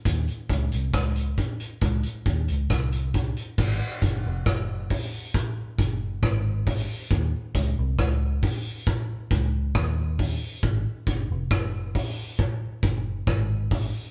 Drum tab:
CC |----------------|x---------------|----------------|----------------|
HH |xxxxxxxxxxxxxxxx|--x---o-p-x---o-|p-x---o-p-x---o-|p-x---o-p-x---o-|
SD |----r-------r---|----r-------r---|----r-------r---|----r-------r---|
BD |o-o-o-o-o-o-o-o-|o-o-o-o-o-o-o-o-|o-o-o-o-o-o-o-o-|o-o-o-o-o-o-o-o-|